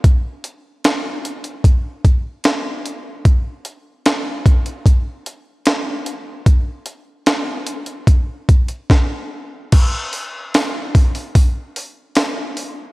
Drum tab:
CC |----------------|----------------|----------------|x---------------|
HH |x-x-x-xxx-x-x-x-|x-x-x-xxx-x-x-x-|x-x-x-xxx-xx----|o-o-o-ooo-o-o-o-|
SD |----o-------o---|----o-------o---|----o-------o---|----o-------o---|
BD |o-------o-o-----|o-----o-o-------|o-------o-o-o---|o-----o-o-------|